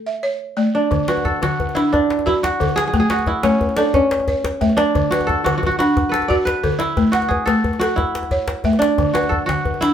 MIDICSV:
0, 0, Header, 1, 4, 480
1, 0, Start_track
1, 0, Tempo, 336323
1, 1309, Time_signature, 12, 3, 24, 8
1, 14181, End_track
2, 0, Start_track
2, 0, Title_t, "Kora"
2, 0, Program_c, 0, 46
2, 1066, Note_on_c, 0, 62, 73
2, 1543, Note_on_c, 0, 66, 78
2, 1781, Note_on_c, 0, 69, 74
2, 2032, Note_off_c, 0, 66, 0
2, 2038, Note_on_c, 0, 66, 76
2, 2496, Note_on_c, 0, 64, 82
2, 2743, Note_off_c, 0, 62, 0
2, 2749, Note_on_c, 0, 62, 80
2, 3228, Note_off_c, 0, 64, 0
2, 3234, Note_on_c, 0, 64, 84
2, 3320, Note_off_c, 0, 64, 0
2, 3465, Note_off_c, 0, 66, 0
2, 3470, Note_on_c, 0, 66, 85
2, 3662, Note_off_c, 0, 69, 0
2, 3936, Note_on_c, 0, 68, 92
2, 4097, Note_off_c, 0, 68, 0
2, 4103, Note_on_c, 0, 68, 73
2, 4272, Note_off_c, 0, 68, 0
2, 4278, Note_on_c, 0, 68, 84
2, 4419, Note_off_c, 0, 66, 0
2, 4425, Note_on_c, 0, 66, 80
2, 4670, Note_on_c, 0, 64, 75
2, 4898, Note_on_c, 0, 61, 81
2, 4983, Note_off_c, 0, 62, 0
2, 5377, Note_on_c, 0, 62, 76
2, 5463, Note_off_c, 0, 61, 0
2, 5624, Note_on_c, 0, 61, 83
2, 5709, Note_off_c, 0, 62, 0
2, 6225, Note_off_c, 0, 68, 0
2, 6512, Note_off_c, 0, 66, 0
2, 6803, Note_on_c, 0, 62, 91
2, 6888, Note_off_c, 0, 61, 0
2, 6906, Note_off_c, 0, 64, 0
2, 7288, Note_on_c, 0, 66, 84
2, 7517, Note_on_c, 0, 69, 86
2, 7763, Note_off_c, 0, 66, 0
2, 7769, Note_on_c, 0, 66, 86
2, 7953, Note_off_c, 0, 66, 0
2, 7959, Note_on_c, 0, 66, 77
2, 8079, Note_off_c, 0, 66, 0
2, 8085, Note_on_c, 0, 66, 87
2, 8253, Note_off_c, 0, 66, 0
2, 8259, Note_on_c, 0, 66, 94
2, 8696, Note_on_c, 0, 71, 61
2, 8723, Note_off_c, 0, 69, 0
2, 8729, Note_on_c, 0, 69, 86
2, 8966, Note_on_c, 0, 74, 89
2, 9052, Note_off_c, 0, 74, 0
2, 9200, Note_off_c, 0, 62, 0
2, 9202, Note_off_c, 0, 71, 0
2, 9207, Note_on_c, 0, 71, 96
2, 9686, Note_on_c, 0, 64, 94
2, 10154, Note_off_c, 0, 66, 0
2, 10159, Note_on_c, 0, 66, 83
2, 10397, Note_on_c, 0, 68, 84
2, 10482, Note_off_c, 0, 69, 0
2, 10641, Note_on_c, 0, 69, 84
2, 10727, Note_off_c, 0, 68, 0
2, 10962, Note_off_c, 0, 71, 0
2, 11119, Note_off_c, 0, 66, 0
2, 11124, Note_on_c, 0, 66, 80
2, 11356, Note_off_c, 0, 64, 0
2, 11361, Note_on_c, 0, 64, 84
2, 12522, Note_off_c, 0, 69, 0
2, 12543, Note_on_c, 0, 62, 85
2, 13032, Note_off_c, 0, 66, 0
2, 13038, Note_on_c, 0, 66, 84
2, 13261, Note_on_c, 0, 69, 77
2, 13347, Note_off_c, 0, 69, 0
2, 13496, Note_off_c, 0, 66, 0
2, 13502, Note_on_c, 0, 66, 80
2, 13598, Note_off_c, 0, 64, 0
2, 13997, Note_on_c, 0, 64, 82
2, 14181, Note_off_c, 0, 62, 0
2, 14181, Note_off_c, 0, 64, 0
2, 14181, Note_off_c, 0, 66, 0
2, 14181, End_track
3, 0, Start_track
3, 0, Title_t, "Balafon"
3, 0, Program_c, 1, 12
3, 92, Note_on_c, 1, 76, 56
3, 330, Note_on_c, 1, 73, 70
3, 809, Note_on_c, 1, 74, 56
3, 812, Note_on_c, 1, 57, 69
3, 819, Note_off_c, 1, 73, 0
3, 822, Note_off_c, 1, 76, 0
3, 1297, Note_on_c, 1, 50, 76
3, 1302, Note_off_c, 1, 57, 0
3, 1542, Note_off_c, 1, 74, 0
3, 1544, Note_on_c, 1, 71, 58
3, 1786, Note_off_c, 1, 50, 0
3, 2026, Note_on_c, 1, 50, 75
3, 2270, Note_off_c, 1, 71, 0
3, 2502, Note_on_c, 1, 62, 65
3, 2511, Note_off_c, 1, 50, 0
3, 2990, Note_off_c, 1, 62, 0
3, 3225, Note_on_c, 1, 66, 74
3, 3712, Note_off_c, 1, 66, 0
3, 3713, Note_on_c, 1, 50, 75
3, 3715, Note_on_c, 1, 69, 61
3, 4192, Note_on_c, 1, 57, 78
3, 4196, Note_off_c, 1, 50, 0
3, 4433, Note_on_c, 1, 78, 60
3, 4438, Note_off_c, 1, 69, 0
3, 4676, Note_off_c, 1, 57, 0
3, 4908, Note_on_c, 1, 57, 75
3, 5157, Note_off_c, 1, 78, 0
3, 5387, Note_on_c, 1, 69, 72
3, 5394, Note_off_c, 1, 57, 0
3, 5873, Note_off_c, 1, 69, 0
3, 6110, Note_on_c, 1, 73, 75
3, 6579, Note_on_c, 1, 57, 75
3, 6582, Note_on_c, 1, 76, 63
3, 6595, Note_off_c, 1, 73, 0
3, 7064, Note_on_c, 1, 50, 78
3, 7069, Note_off_c, 1, 57, 0
3, 7310, Note_off_c, 1, 76, 0
3, 7313, Note_on_c, 1, 71, 61
3, 7551, Note_off_c, 1, 50, 0
3, 7793, Note_on_c, 1, 50, 77
3, 8035, Note_off_c, 1, 71, 0
3, 8271, Note_on_c, 1, 62, 71
3, 8275, Note_off_c, 1, 50, 0
3, 8753, Note_off_c, 1, 62, 0
3, 8988, Note_on_c, 1, 66, 79
3, 9469, Note_on_c, 1, 50, 73
3, 9469, Note_on_c, 1, 69, 64
3, 9471, Note_off_c, 1, 66, 0
3, 9950, Note_on_c, 1, 57, 82
3, 9951, Note_off_c, 1, 50, 0
3, 10191, Note_off_c, 1, 69, 0
3, 10194, Note_on_c, 1, 78, 63
3, 10431, Note_off_c, 1, 57, 0
3, 10676, Note_on_c, 1, 57, 74
3, 10912, Note_off_c, 1, 78, 0
3, 11151, Note_on_c, 1, 69, 68
3, 11153, Note_off_c, 1, 57, 0
3, 11630, Note_off_c, 1, 69, 0
3, 11866, Note_on_c, 1, 73, 74
3, 12341, Note_on_c, 1, 76, 62
3, 12343, Note_on_c, 1, 57, 72
3, 12346, Note_off_c, 1, 73, 0
3, 12824, Note_off_c, 1, 57, 0
3, 12826, Note_on_c, 1, 50, 77
3, 13054, Note_on_c, 1, 71, 58
3, 13062, Note_off_c, 1, 76, 0
3, 13304, Note_off_c, 1, 50, 0
3, 13529, Note_on_c, 1, 50, 70
3, 13777, Note_off_c, 1, 71, 0
3, 14008, Note_on_c, 1, 62, 72
3, 14014, Note_off_c, 1, 50, 0
3, 14181, Note_off_c, 1, 62, 0
3, 14181, End_track
4, 0, Start_track
4, 0, Title_t, "Djembe"
4, 1305, Note_on_c, 9, 62, 18
4, 1305, Note_on_c, 9, 63, 59
4, 1305, Note_on_c, 9, 64, 59
4, 1447, Note_off_c, 9, 62, 0
4, 1447, Note_off_c, 9, 63, 0
4, 1447, Note_off_c, 9, 64, 0
4, 1541, Note_on_c, 9, 62, 61
4, 1673, Note_on_c, 9, 63, 49
4, 1683, Note_off_c, 9, 62, 0
4, 1788, Note_on_c, 9, 62, 18
4, 1788, Note_on_c, 9, 64, 60
4, 1815, Note_off_c, 9, 63, 0
4, 1931, Note_off_c, 9, 62, 0
4, 1931, Note_off_c, 9, 64, 0
4, 2036, Note_on_c, 9, 62, 56
4, 2036, Note_on_c, 9, 63, 63
4, 2178, Note_off_c, 9, 62, 0
4, 2178, Note_off_c, 9, 63, 0
4, 2281, Note_on_c, 9, 64, 60
4, 2411, Note_on_c, 9, 63, 47
4, 2424, Note_off_c, 9, 64, 0
4, 2519, Note_on_c, 9, 62, 62
4, 2554, Note_off_c, 9, 63, 0
4, 2662, Note_off_c, 9, 62, 0
4, 2764, Note_on_c, 9, 62, 20
4, 2764, Note_on_c, 9, 63, 63
4, 2764, Note_on_c, 9, 64, 60
4, 2907, Note_off_c, 9, 62, 0
4, 2907, Note_off_c, 9, 63, 0
4, 2907, Note_off_c, 9, 64, 0
4, 3002, Note_on_c, 9, 62, 63
4, 3125, Note_on_c, 9, 63, 50
4, 3145, Note_off_c, 9, 62, 0
4, 3240, Note_on_c, 9, 64, 57
4, 3267, Note_off_c, 9, 63, 0
4, 3383, Note_off_c, 9, 64, 0
4, 3482, Note_on_c, 9, 62, 68
4, 3482, Note_on_c, 9, 63, 62
4, 3625, Note_off_c, 9, 62, 0
4, 3625, Note_off_c, 9, 63, 0
4, 3728, Note_on_c, 9, 62, 20
4, 3728, Note_on_c, 9, 64, 66
4, 3841, Note_off_c, 9, 62, 0
4, 3841, Note_on_c, 9, 62, 19
4, 3841, Note_on_c, 9, 63, 48
4, 3870, Note_off_c, 9, 64, 0
4, 3962, Note_off_c, 9, 62, 0
4, 3962, Note_on_c, 9, 62, 65
4, 3984, Note_off_c, 9, 63, 0
4, 4074, Note_off_c, 9, 62, 0
4, 4074, Note_on_c, 9, 62, 21
4, 4190, Note_off_c, 9, 62, 0
4, 4190, Note_on_c, 9, 62, 20
4, 4190, Note_on_c, 9, 63, 64
4, 4190, Note_on_c, 9, 64, 63
4, 4332, Note_off_c, 9, 62, 0
4, 4332, Note_off_c, 9, 63, 0
4, 4332, Note_off_c, 9, 64, 0
4, 4422, Note_on_c, 9, 62, 69
4, 4547, Note_on_c, 9, 63, 49
4, 4565, Note_off_c, 9, 62, 0
4, 4660, Note_on_c, 9, 62, 20
4, 4660, Note_on_c, 9, 64, 64
4, 4689, Note_off_c, 9, 63, 0
4, 4803, Note_off_c, 9, 62, 0
4, 4803, Note_off_c, 9, 64, 0
4, 4902, Note_on_c, 9, 62, 62
4, 4902, Note_on_c, 9, 63, 69
4, 5044, Note_off_c, 9, 62, 0
4, 5044, Note_off_c, 9, 63, 0
4, 5151, Note_on_c, 9, 64, 62
4, 5264, Note_on_c, 9, 63, 51
4, 5294, Note_off_c, 9, 64, 0
4, 5372, Note_on_c, 9, 62, 64
4, 5407, Note_off_c, 9, 63, 0
4, 5499, Note_off_c, 9, 62, 0
4, 5499, Note_on_c, 9, 62, 21
4, 5622, Note_off_c, 9, 62, 0
4, 5622, Note_on_c, 9, 62, 20
4, 5622, Note_on_c, 9, 63, 66
4, 5622, Note_on_c, 9, 64, 69
4, 5765, Note_off_c, 9, 62, 0
4, 5765, Note_off_c, 9, 63, 0
4, 5765, Note_off_c, 9, 64, 0
4, 5868, Note_on_c, 9, 62, 67
4, 5990, Note_on_c, 9, 63, 53
4, 6011, Note_off_c, 9, 62, 0
4, 6103, Note_on_c, 9, 64, 66
4, 6133, Note_off_c, 9, 63, 0
4, 6246, Note_off_c, 9, 64, 0
4, 6343, Note_on_c, 9, 62, 65
4, 6343, Note_on_c, 9, 63, 68
4, 6486, Note_off_c, 9, 62, 0
4, 6486, Note_off_c, 9, 63, 0
4, 6585, Note_on_c, 9, 62, 21
4, 6585, Note_on_c, 9, 64, 66
4, 6700, Note_off_c, 9, 62, 0
4, 6700, Note_on_c, 9, 62, 21
4, 6700, Note_on_c, 9, 63, 51
4, 6728, Note_off_c, 9, 64, 0
4, 6815, Note_off_c, 9, 62, 0
4, 6815, Note_on_c, 9, 62, 75
4, 6843, Note_off_c, 9, 63, 0
4, 6952, Note_off_c, 9, 62, 0
4, 6952, Note_on_c, 9, 62, 20
4, 7070, Note_off_c, 9, 62, 0
4, 7070, Note_on_c, 9, 62, 21
4, 7070, Note_on_c, 9, 63, 67
4, 7070, Note_on_c, 9, 64, 64
4, 7213, Note_off_c, 9, 62, 0
4, 7213, Note_off_c, 9, 63, 0
4, 7213, Note_off_c, 9, 64, 0
4, 7309, Note_on_c, 9, 62, 68
4, 7430, Note_on_c, 9, 63, 55
4, 7452, Note_off_c, 9, 62, 0
4, 7553, Note_on_c, 9, 62, 21
4, 7553, Note_on_c, 9, 64, 65
4, 7573, Note_off_c, 9, 63, 0
4, 7696, Note_off_c, 9, 62, 0
4, 7696, Note_off_c, 9, 64, 0
4, 7794, Note_on_c, 9, 62, 68
4, 7794, Note_on_c, 9, 63, 67
4, 7937, Note_off_c, 9, 62, 0
4, 7937, Note_off_c, 9, 63, 0
4, 8037, Note_on_c, 9, 64, 67
4, 8157, Note_on_c, 9, 63, 51
4, 8180, Note_off_c, 9, 64, 0
4, 8279, Note_on_c, 9, 62, 65
4, 8299, Note_off_c, 9, 63, 0
4, 8402, Note_off_c, 9, 62, 0
4, 8402, Note_on_c, 9, 62, 20
4, 8517, Note_off_c, 9, 62, 0
4, 8517, Note_on_c, 9, 62, 22
4, 8517, Note_on_c, 9, 63, 66
4, 8517, Note_on_c, 9, 64, 67
4, 8660, Note_off_c, 9, 62, 0
4, 8660, Note_off_c, 9, 63, 0
4, 8660, Note_off_c, 9, 64, 0
4, 8759, Note_on_c, 9, 62, 66
4, 8880, Note_on_c, 9, 63, 50
4, 8902, Note_off_c, 9, 62, 0
4, 8998, Note_on_c, 9, 64, 66
4, 9023, Note_off_c, 9, 63, 0
4, 9140, Note_off_c, 9, 64, 0
4, 9233, Note_on_c, 9, 62, 69
4, 9233, Note_on_c, 9, 63, 64
4, 9376, Note_off_c, 9, 62, 0
4, 9376, Note_off_c, 9, 63, 0
4, 9475, Note_on_c, 9, 62, 21
4, 9475, Note_on_c, 9, 64, 68
4, 9593, Note_off_c, 9, 62, 0
4, 9593, Note_on_c, 9, 62, 19
4, 9593, Note_on_c, 9, 63, 47
4, 9617, Note_off_c, 9, 64, 0
4, 9701, Note_off_c, 9, 62, 0
4, 9701, Note_on_c, 9, 62, 65
4, 9736, Note_off_c, 9, 63, 0
4, 9834, Note_off_c, 9, 62, 0
4, 9834, Note_on_c, 9, 62, 19
4, 9947, Note_off_c, 9, 62, 0
4, 9947, Note_on_c, 9, 62, 19
4, 9947, Note_on_c, 9, 63, 61
4, 9947, Note_on_c, 9, 64, 64
4, 10090, Note_off_c, 9, 62, 0
4, 10090, Note_off_c, 9, 63, 0
4, 10090, Note_off_c, 9, 64, 0
4, 10178, Note_on_c, 9, 62, 67
4, 10305, Note_on_c, 9, 63, 50
4, 10320, Note_off_c, 9, 62, 0
4, 10431, Note_on_c, 9, 64, 65
4, 10448, Note_off_c, 9, 63, 0
4, 10573, Note_off_c, 9, 64, 0
4, 10667, Note_on_c, 9, 62, 61
4, 10667, Note_on_c, 9, 63, 64
4, 10810, Note_off_c, 9, 62, 0
4, 10810, Note_off_c, 9, 63, 0
4, 10909, Note_on_c, 9, 64, 63
4, 11035, Note_on_c, 9, 63, 51
4, 11052, Note_off_c, 9, 64, 0
4, 11150, Note_on_c, 9, 62, 64
4, 11178, Note_off_c, 9, 63, 0
4, 11293, Note_off_c, 9, 62, 0
4, 11384, Note_on_c, 9, 62, 20
4, 11384, Note_on_c, 9, 63, 64
4, 11384, Note_on_c, 9, 64, 63
4, 11506, Note_off_c, 9, 62, 0
4, 11506, Note_on_c, 9, 62, 19
4, 11527, Note_off_c, 9, 63, 0
4, 11527, Note_off_c, 9, 64, 0
4, 11632, Note_off_c, 9, 62, 0
4, 11632, Note_on_c, 9, 62, 65
4, 11743, Note_off_c, 9, 62, 0
4, 11743, Note_on_c, 9, 62, 21
4, 11743, Note_on_c, 9, 63, 52
4, 11860, Note_off_c, 9, 62, 0
4, 11860, Note_on_c, 9, 62, 20
4, 11860, Note_on_c, 9, 64, 62
4, 11885, Note_off_c, 9, 63, 0
4, 12003, Note_off_c, 9, 62, 0
4, 12003, Note_off_c, 9, 64, 0
4, 12096, Note_on_c, 9, 62, 65
4, 12096, Note_on_c, 9, 63, 66
4, 12239, Note_off_c, 9, 62, 0
4, 12239, Note_off_c, 9, 63, 0
4, 12330, Note_on_c, 9, 62, 21
4, 12330, Note_on_c, 9, 64, 66
4, 12461, Note_off_c, 9, 62, 0
4, 12461, Note_on_c, 9, 62, 20
4, 12461, Note_on_c, 9, 63, 53
4, 12473, Note_off_c, 9, 64, 0
4, 12585, Note_off_c, 9, 62, 0
4, 12585, Note_on_c, 9, 62, 68
4, 12604, Note_off_c, 9, 63, 0
4, 12704, Note_off_c, 9, 62, 0
4, 12704, Note_on_c, 9, 62, 21
4, 12820, Note_off_c, 9, 62, 0
4, 12820, Note_on_c, 9, 62, 19
4, 12820, Note_on_c, 9, 63, 65
4, 12820, Note_on_c, 9, 64, 69
4, 12962, Note_off_c, 9, 62, 0
4, 12962, Note_off_c, 9, 63, 0
4, 12962, Note_off_c, 9, 64, 0
4, 13058, Note_on_c, 9, 62, 68
4, 13173, Note_on_c, 9, 63, 51
4, 13200, Note_off_c, 9, 62, 0
4, 13300, Note_on_c, 9, 62, 21
4, 13300, Note_on_c, 9, 64, 63
4, 13316, Note_off_c, 9, 63, 0
4, 13442, Note_off_c, 9, 62, 0
4, 13442, Note_off_c, 9, 64, 0
4, 13543, Note_on_c, 9, 62, 65
4, 13543, Note_on_c, 9, 63, 68
4, 13686, Note_off_c, 9, 62, 0
4, 13686, Note_off_c, 9, 63, 0
4, 13778, Note_on_c, 9, 64, 64
4, 13902, Note_on_c, 9, 63, 48
4, 13921, Note_off_c, 9, 64, 0
4, 14018, Note_on_c, 9, 62, 64
4, 14045, Note_off_c, 9, 63, 0
4, 14161, Note_off_c, 9, 62, 0
4, 14181, End_track
0, 0, End_of_file